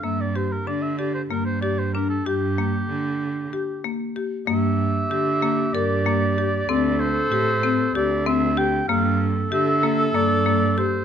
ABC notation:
X:1
M:7/8
L:1/16
Q:1/4=95
K:Gdor
V:1 name="Oboe"
e d c B d e d c B c d c B A | G8- G2 z4 | e8 d6- | d2 c6 d2 e2 g2 |
f2 z2 e4 d4 c2 |]
V:2 name="Clarinet"
z12 z2 | z12 z2 | G12- G2 | A12 z2 |
A12- A2 |]
V:3 name="Marimba"
B,2 G2 D2 G2 B,2 G2 D2 | G2 B,4 z2 G2 B,2 G2 | B,4 G2 B,2 B2 B,2 G2 | C4 G2 C2 G2 C2 G2 |
B,4 G2 B,2 B,2 B,2 G2 |]
V:4 name="Cello" clef=bass
G,,4 D,4 G,,6 | G,,4 D,4 z6 | G,,4 D,4 G,,6 | D,,4 A,,4 D,,6 |
G,,4 D,4 G,,6 |]